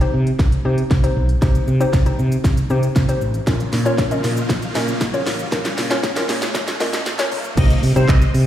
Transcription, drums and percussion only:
0.01 closed hi-hat medium
0.27 closed hi-hat medium
0.39 kick loud
0.39 snare medium
0.39 closed hi-hat medium
0.52 closed hi-hat medium
0.78 closed hi-hat medium
0.91 kick loud
0.91 snare medium
0.91 closed hi-hat medium
1.04 closed hi-hat medium
1.29 closed hi-hat soft
1.42 kick loud
1.42 snare medium
1.42 closed hi-hat medium
1.42 shaker medium
1.55 closed hi-hat soft
1.55 shaker soft
1.68 shaker medium
1.81 closed hi-hat soft
1.81 shaker medium
1.93 kick loud
1.93 snare medium
1.93 closed hi-hat medium
1.93 shaker medium
2.06 closed hi-hat medium
2.06 shaker medium
2.19 shaker medium
2.32 closed hi-hat medium
2.32 shaker medium
2.44 kick loud
2.44 snare medium
2.44 closed hi-hat medium
2.44 shaker medium
2.57 closed hi-hat medium
2.57 shaker medium
2.70 shaker medium
2.83 closed hi-hat medium
2.83 shaker medium
2.96 kick loud
2.96 snare medium
2.96 closed hi-hat medium
2.96 shaker medium
3.09 closed hi-hat medium
3.09 shaker medium
3.21 shaker medium
3.34 closed hi-hat soft
3.34 shaker medium
3.47 kick loud
3.47 snare medium
3.47 closed hi-hat medium
3.47 shaker medium
3.60 closed hi-hat soft
3.60 shaker soft
3.73 snare medium
3.73 open hi-hat medium
3.73 shaker medium
3.86 closed hi-hat soft
3.86 shaker medium
3.98 kick loud
3.98 snare medium
3.98 closed hi-hat medium
3.98 shaker medium
4.11 closed hi-hat medium
4.11 shaker medium
4.24 snare medium
4.24 open hi-hat medium
4.24 shaker medium
4.37 closed hi-hat medium
4.37 shaker medium
4.49 kick loud
4.49 snare loud
4.49 closed hi-hat medium
4.49 shaker medium
4.62 closed hi-hat medium
4.62 shaker medium
4.75 snare loud
4.75 open hi-hat medium
4.75 shaker medium
4.88 closed hi-hat medium
4.88 shaker medium
5.01 kick loud
5.01 snare loud
5.01 closed hi-hat medium
5.01 shaker medium
5.14 closed hi-hat medium
5.14 shaker medium
5.26 snare loud
5.26 open hi-hat medium
5.26 shaker medium
5.39 closed hi-hat soft
5.39 shaker medium
5.52 kick loud
5.52 snare loud
5.52 closed hi-hat medium
5.52 shaker medium
5.65 snare loud
5.65 closed hi-hat soft
5.65 shaker soft
5.78 snare loud
5.78 open hi-hat medium
5.78 shaker medium
5.91 snare loud
5.91 closed hi-hat medium
5.91 shaker medium
6.03 kick loud
6.03 snare loud
6.03 closed hi-hat medium
6.03 shaker medium
6.16 snare loud
6.16 closed hi-hat medium
6.16 shaker medium
6.29 snare loud
6.29 open hi-hat medium
6.29 shaker medium
6.42 snare loud
6.42 closed hi-hat medium
6.42 shaker medium
6.55 kick loud
6.55 snare loud
6.55 closed hi-hat medium
6.55 shaker medium
6.68 snare loud
6.68 closed hi-hat medium
6.68 shaker medium
6.80 snare loud
6.80 open hi-hat medium
6.80 shaker medium
6.93 snare loud
6.93 closed hi-hat medium
6.93 shaker medium
7.06 snare loud
7.06 closed hi-hat medium
7.06 shaker medium
7.19 snare loud
7.19 closed hi-hat medium
7.19 shaker medium
7.32 open hi-hat medium
7.32 shaker medium
7.44 closed hi-hat soft
7.44 shaker medium
7.57 kick loud
7.57 closed hi-hat medium
7.57 crash loud
7.57 shaker medium
7.70 closed hi-hat soft
7.70 shaker medium
7.83 open hi-hat medium
7.83 shaker medium
7.96 closed hi-hat soft
7.96 shaker medium
8.09 kick loud
8.09 clap loud
8.09 closed hi-hat medium
8.09 shaker medium
8.22 closed hi-hat medium
8.22 shaker medium
8.34 open hi-hat medium
8.34 shaker medium

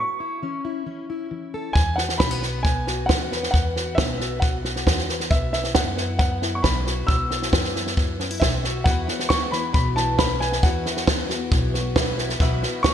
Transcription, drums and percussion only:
1.76 kick medium
1.76 snare soft
1.98 snare soft
2.09 snare soft
2.20 kick medium
2.20 snare medium
2.42 snare soft
2.65 kick medium
2.65 snare soft
2.87 snare soft
3.09 kick medium
3.09 snare medium
3.32 snare soft
3.43 snare soft
3.54 kick medium
3.54 snare soft
3.76 snare soft
3.98 kick medium
3.98 snare loud
4.20 snare soft
4.42 kick loud
4.42 snare soft
4.65 snare soft
4.76 snare soft
4.87 kick medium
4.87 snare medium
4.98 snare soft
5.09 snare soft
5.20 snare soft
5.31 kick medium
5.31 snare soft
5.53 snare soft
5.64 snare soft
5.75 kick medium
5.75 snare medium
5.97 snare soft
6.19 kick loud
6.19 snare soft
6.42 snare soft
6.64 kick medium
6.64 snare medium
6.87 snare soft
7.08 kick medium
7.08 snare soft
7.31 snare soft
7.42 snare soft
7.53 kick medium
7.53 snare medium
7.64 snare soft
7.76 snare soft
7.87 snare soft
7.97 kick medium
7.97 snare soft
8.20 snare soft
8.42 kick medium
8.42 snare medium
8.64 snare soft
8.86 kick medium
8.86 snare soft
9.08 snare soft
9.19 snare soft
9.30 kick medium
9.30 snare loud
9.52 snare soft
9.74 kick loud
9.74 snare soft
9.97 snare soft
10.19 kick medium
10.19 snare loud
10.41 snare soft
10.52 snare soft
10.63 kick loud
10.63 snare soft
10.86 snare soft
10.97 snare soft
11.07 kick medium
11.07 snare loud
11.30 snare soft
11.52 kick loud
11.52 snare soft
11.74 snare soft
11.96 kick medium
11.96 snare loud
12.18 snare soft
12.29 snare soft
12.40 kick loud
12.40 snare soft
12.63 snare soft
12.84 kick medium
12.84 snare loud

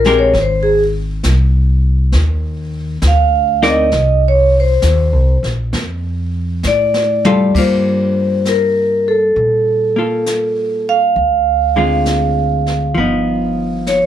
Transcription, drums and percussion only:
0.04 snare soft
0.34 brush sweep soft
0.34 snare soft
1.23 snare medium
1.23 hi-hat pedal medium
2.12 brush sweep soft
2.12 snare soft
3.02 snare medium
3.02 hi-hat pedal soft
3.63 snare soft
3.91 brush sweep soft
3.91 snare soft
4.82 snare medium
4.82 hi-hat pedal medium
5.44 snare soft
5.73 brush sweep soft
5.73 snare soft
6.63 snare soft
6.63 hi-hat pedal medium
6.94 snare medium
7.25 mid tom medium
7.55 brush sweep soft
7.55 kick medium
7.55 crash medium
8.45 snare soft
8.45 hi-hat pedal soft
9.37 brush sweep soft
10.26 snare soft
10.26 hi-hat pedal soft
11.16 brush sweep soft
12.06 snare soft
12.06 hi-hat pedal soft
12.66 snare soft
12.97 brush sweep soft
13.87 snare soft
13.87 hi-hat pedal soft

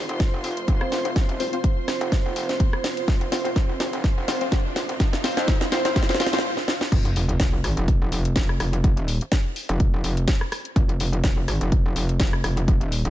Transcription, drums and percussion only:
0.09 closed hi-hat soft
0.20 kick loud
0.20 snare medium
0.20 closed hi-hat medium
0.44 open hi-hat loud
0.57 closed hi-hat medium
0.68 kick loud
0.68 closed hi-hat medium
0.81 cross-stick medium
0.92 snare medium
0.92 open hi-hat medium
1.05 closed hi-hat medium
1.16 kick loud
1.16 snare medium
1.16 closed hi-hat medium
1.29 closed hi-hat soft
1.40 open hi-hat loud
1.53 closed hi-hat soft
1.64 kick loud
1.64 closed hi-hat medium
1.88 cross-stick medium
1.88 snare medium
1.88 open hi-hat medium
2.01 closed hi-hat soft
2.12 kick loud
2.12 snare medium
2.12 closed hi-hat medium
2.36 open hi-hat loud
2.49 snare medium
2.49 closed hi-hat medium
2.60 kick loud
2.60 closed hi-hat medium
2.73 cross-stick medium
2.84 snare medium
2.84 open hi-hat medium
2.97 closed hi-hat medium
3.08 kick loud
3.08 snare medium
3.08 closed hi-hat medium
3.21 closed hi-hat soft
3.32 snare medium
3.32 open hi-hat loud
3.45 closed hi-hat soft
3.56 kick loud
3.56 snare medium
3.56 closed hi-hat medium
3.80 snare medium
3.80 open hi-hat loud
3.93 closed hi-hat soft
4.04 kick loud
4.04 snare medium
4.04 closed hi-hat medium
4.28 snare medium
4.28 open hi-hat loud
4.41 closed hi-hat medium
4.52 kick loud
4.52 snare medium
4.52 closed hi-hat medium
4.76 snare medium
4.76 open hi-hat loud
4.89 closed hi-hat medium
5.00 kick loud
5.00 snare medium
5.00 closed hi-hat medium
5.13 snare medium
5.13 closed hi-hat soft
5.24 snare loud
5.24 open hi-hat loud
5.37 snare medium
5.37 closed hi-hat soft
5.48 kick loud
5.48 snare loud
5.48 closed hi-hat medium
5.61 snare medium
5.72 snare loud
5.72 open hi-hat loud
5.85 snare medium
5.85 closed hi-hat medium
5.96 kick loud
5.96 snare loud
5.96 closed hi-hat medium
6.03 snare medium
6.09 snare medium
6.15 snare medium
6.20 snare loud
6.20 open hi-hat loud
6.27 snare medium
6.33 snare loud
6.33 closed hi-hat medium
6.39 snare loud
6.57 snare medium
6.68 snare medium
6.81 snare medium
6.92 kick loud
6.92 closed hi-hat medium
6.92 crash loud
7.05 closed hi-hat soft
7.16 open hi-hat loud
7.29 closed hi-hat medium
7.40 kick loud
7.40 snare loud
7.40 closed hi-hat medium
7.64 cross-stick medium
7.64 open hi-hat loud
7.77 closed hi-hat medium
7.88 kick loud
7.88 closed hi-hat medium
8.12 open hi-hat loud
8.25 closed hi-hat medium
8.36 kick loud
8.36 snare loud
8.36 closed hi-hat medium
8.49 cross-stick medium
8.60 cross-stick medium
8.60 open hi-hat medium
8.73 closed hi-hat medium
8.84 kick loud
8.84 closed hi-hat medium
8.97 closed hi-hat soft
9.08 open hi-hat loud
9.21 closed hi-hat medium
9.32 kick loud
9.32 snare loud
9.32 closed hi-hat medium
9.56 open hi-hat loud
9.69 closed hi-hat medium
9.80 kick loud
9.80 closed hi-hat medium
10.04 open hi-hat loud
10.17 closed hi-hat medium
10.28 kick loud
10.28 snare loud
10.28 closed hi-hat medium
10.41 cross-stick medium
10.52 cross-stick medium
10.52 open hi-hat medium
10.65 closed hi-hat medium
10.76 kick loud
10.76 closed hi-hat medium
10.89 closed hi-hat soft
11.00 open hi-hat loud
11.13 closed hi-hat soft
11.24 kick loud
11.24 snare loud
11.24 closed hi-hat medium
11.48 cross-stick medium
11.48 open hi-hat loud
11.61 closed hi-hat medium
11.72 kick loud
11.72 closed hi-hat medium
11.96 open hi-hat loud
12.09 closed hi-hat medium
12.20 kick loud
12.20 snare loud
12.20 closed hi-hat medium
12.33 cross-stick medium
12.44 cross-stick medium
12.44 open hi-hat loud
12.57 closed hi-hat medium
12.68 kick loud
12.68 closed hi-hat medium
12.81 closed hi-hat soft
12.92 open hi-hat loud
13.05 closed hi-hat soft

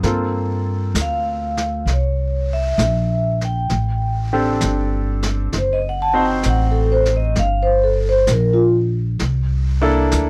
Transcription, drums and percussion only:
0.03 brush sweep soft
0.03 snare soft
0.95 snare medium
0.95 hi-hat pedal medium
1.57 snare soft
1.87 brush sweep soft
1.87 snare soft
2.79 snare medium
2.79 hi-hat pedal medium
3.41 snare soft
3.69 brush sweep soft
3.69 snare soft
4.61 snare medium
4.61 hi-hat pedal soft
5.22 snare soft
5.52 brush sweep soft
5.52 snare soft
6.43 snare medium
6.43 hi-hat pedal soft
7.05 snare soft
7.35 brush sweep soft
7.35 snare soft
8.27 snare medium
8.27 hi-hat pedal soft
9.19 brush sweep soft
9.19 snare soft
10.11 snare medium
10.11 hi-hat pedal soft

